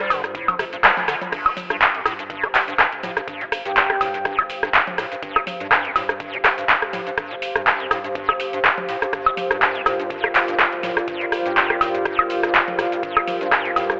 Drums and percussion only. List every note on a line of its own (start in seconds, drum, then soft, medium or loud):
0.10 open hi-hat loud
0.10 high woodblock medium
0.10 shaker medium
0.24 cross-stick soft
0.24 closed hi-hat soft
0.24 shaker soft
0.35 kick loud
0.35 closed hi-hat loud
0.35 shaker soft
0.48 closed hi-hat soft
0.48 low conga medium
0.48 high woodblock medium
0.48 shaker soft
0.59 cross-stick medium
0.59 open hi-hat loud
0.59 shaker medium
0.73 closed hi-hat soft
0.73 shaker soft
0.84 cross-stick soft
0.84 clap loud
0.84 closed hi-hat loud
0.84 shaker soft
0.97 closed hi-hat soft
0.97 low conga medium
0.97 shaker soft
1.08 cross-stick medium
1.08 open hi-hat loud
1.08 shaker medium
1.22 closed hi-hat soft
1.22 low conga medium
1.22 shaker soft
1.32 kick loud
1.32 cross-stick medium
1.32 closed hi-hat loud
1.32 crash loud
1.32 shaker soft
1.46 closed hi-hat soft
1.46 high woodblock medium
1.57 open hi-hat loud
1.57 low conga medium
1.57 shaker medium
1.70 cross-stick medium
1.70 closed hi-hat soft
1.70 shaker soft
1.81 kick loud
1.81 clap loud
1.81 closed hi-hat medium
1.81 shaker soft
1.95 closed hi-hat soft
2.06 cross-stick medium
2.06 open hi-hat loud
2.06 high woodblock medium
2.06 shaker medium
2.19 closed hi-hat soft
2.19 shaker soft
2.30 kick loud
2.30 closed hi-hat loud
2.30 shaker soft
2.44 cross-stick medium
2.44 closed hi-hat soft
2.54 clap medium
2.54 open hi-hat loud
2.54 shaker medium
2.68 closed hi-hat soft
2.68 shaker soft
2.79 kick loud
2.79 cross-stick medium
2.79 clap loud
2.79 closed hi-hat loud
2.79 shaker soft
2.92 closed hi-hat soft
3.03 open hi-hat loud
3.03 low conga medium
3.03 shaker medium
3.17 cross-stick medium
3.17 closed hi-hat soft
3.17 shaker soft
3.28 kick loud
3.28 closed hi-hat medium
3.28 shaker soft
3.41 closed hi-hat soft
3.52 cross-stick medium
3.52 open hi-hat loud
3.52 shaker medium
3.65 closed hi-hat soft
3.65 shaker soft
3.76 kick loud
3.76 clap loud
3.76 closed hi-hat loud
3.76 shaker soft
3.90 cross-stick medium
3.90 closed hi-hat soft
4.01 open hi-hat loud
4.01 high woodblock medium
4.01 shaker medium
4.14 closed hi-hat soft
4.14 shaker soft
4.25 kick loud
4.25 cross-stick medium
4.25 closed hi-hat medium
4.25 shaker soft
4.39 closed hi-hat soft
4.39 high woodblock medium
4.50 open hi-hat loud
4.50 shaker medium
4.63 cross-stick medium
4.63 closed hi-hat soft
4.63 shaker soft
4.74 kick loud
4.74 clap loud
4.74 closed hi-hat loud
4.74 shaker soft
4.87 closed hi-hat soft
4.87 low conga medium
4.98 cross-stick medium
4.98 open hi-hat loud
4.98 shaker medium
5.12 closed hi-hat soft
5.12 shaker soft
5.23 kick loud
5.23 closed hi-hat medium
5.23 shaker soft
5.36 cross-stick medium
5.36 closed hi-hat soft
5.36 high woodblock medium
5.47 open hi-hat loud
5.47 low conga medium
5.47 shaker medium
5.60 closed hi-hat soft
5.60 shaker soft
5.71 kick loud
5.71 cross-stick medium
5.71 clap loud
5.71 closed hi-hat medium
5.71 shaker soft
5.85 closed hi-hat soft
5.96 open hi-hat loud
5.96 high woodblock medium
5.96 shaker medium
6.09 cross-stick medium
6.09 closed hi-hat soft
6.09 shaker soft
6.20 kick loud
6.20 closed hi-hat medium
6.20 shaker soft
6.33 closed hi-hat soft
6.44 cross-stick medium
6.44 clap medium
6.44 open hi-hat loud
6.44 shaker medium
6.58 closed hi-hat soft
6.58 shaker soft
6.69 kick loud
6.69 clap loud
6.69 closed hi-hat medium
6.69 shaker soft
6.82 cross-stick medium
6.82 closed hi-hat soft
6.93 open hi-hat loud
6.93 low conga medium
6.93 shaker medium
7.07 closed hi-hat soft
7.07 shaker soft
7.18 kick loud
7.18 cross-stick medium
7.18 closed hi-hat medium
7.18 shaker soft
7.31 closed hi-hat soft
7.42 open hi-hat loud
7.42 shaker medium
7.56 cross-stick medium
7.56 closed hi-hat soft
7.56 shaker soft
7.67 kick loud
7.67 clap loud
7.67 closed hi-hat medium
7.67 shaker soft
7.80 closed hi-hat soft
7.91 cross-stick medium
7.91 open hi-hat loud
7.91 high woodblock medium
7.91 shaker medium
8.04 closed hi-hat soft
8.04 shaker soft
8.15 kick loud
8.15 closed hi-hat medium
8.15 shaker soft
8.29 cross-stick medium
8.29 closed hi-hat soft
8.29 high woodblock medium
8.40 open hi-hat loud
8.40 shaker medium
8.53 closed hi-hat soft
8.53 shaker soft
8.64 kick loud
8.64 cross-stick medium
8.64 clap loud
8.64 closed hi-hat medium
8.64 shaker soft
8.78 closed hi-hat soft
8.78 low conga medium
8.89 open hi-hat loud
8.89 shaker medium
9.02 cross-stick medium
9.02 closed hi-hat soft
9.02 shaker soft
9.13 kick loud
9.13 cross-stick medium
9.13 closed hi-hat medium
9.13 shaker soft
9.26 closed hi-hat soft
9.26 high woodblock medium
9.37 open hi-hat loud
9.37 low conga medium
9.37 shaker medium
9.51 cross-stick medium
9.51 closed hi-hat soft
9.51 shaker soft
9.62 kick loud
9.62 clap loud
9.62 closed hi-hat medium
9.62 shaker soft
9.75 closed hi-hat soft
9.86 cross-stick medium
9.86 open hi-hat loud
9.86 high woodblock medium
9.86 shaker medium
10.00 closed hi-hat soft
10.00 shaker soft
10.10 kick loud
10.10 closed hi-hat medium
10.10 shaker soft
10.24 cross-stick medium
10.24 closed hi-hat soft
10.35 clap medium
10.35 open hi-hat loud
10.35 shaker medium
10.48 closed hi-hat soft
10.48 shaker soft
10.59 kick loud
10.59 cross-stick medium
10.59 clap loud
10.59 closed hi-hat medium
10.59 shaker soft
10.73 closed hi-hat soft
10.83 open hi-hat loud
10.83 low conga medium
10.83 shaker medium
10.97 cross-stick medium
10.97 closed hi-hat soft
10.97 shaker soft
11.08 kick loud
11.08 closed hi-hat medium
11.08 shaker soft
11.21 closed hi-hat soft
11.32 cross-stick medium
11.32 open hi-hat loud
11.32 shaker medium
11.46 closed hi-hat soft
11.46 shaker soft
11.57 kick loud
11.57 clap loud
11.57 closed hi-hat loud
11.57 shaker soft
11.70 cross-stick medium
11.70 closed hi-hat soft
11.81 open hi-hat loud
11.81 high woodblock medium
11.81 shaker medium
11.95 closed hi-hat soft
11.95 shaker soft
12.05 kick loud
12.05 cross-stick medium
12.05 closed hi-hat loud
12.05 shaker soft
12.19 closed hi-hat soft
12.19 high woodblock medium
12.30 open hi-hat loud
12.30 shaker medium
12.43 cross-stick medium
12.43 closed hi-hat soft
12.43 shaker soft
12.54 kick loud
12.54 clap loud
12.54 closed hi-hat medium
12.54 shaker soft
12.68 closed hi-hat soft
12.68 low conga medium
12.79 cross-stick medium
12.79 open hi-hat loud
12.79 shaker medium
12.92 closed hi-hat soft
12.92 shaker soft
13.03 kick loud
13.03 closed hi-hat loud
13.03 shaker soft
13.17 cross-stick medium
13.17 closed hi-hat soft
13.17 high woodblock medium
13.27 open hi-hat loud
13.27 low conga medium
13.27 shaker medium
13.41 closed hi-hat soft
13.41 shaker soft
13.52 kick loud
13.52 cross-stick medium
13.52 clap loud
13.52 closed hi-hat loud
13.52 shaker soft
13.65 closed hi-hat soft
13.76 open hi-hat loud
13.76 high woodblock medium
13.76 shaker medium
13.90 cross-stick medium
13.90 closed hi-hat soft
13.90 shaker soft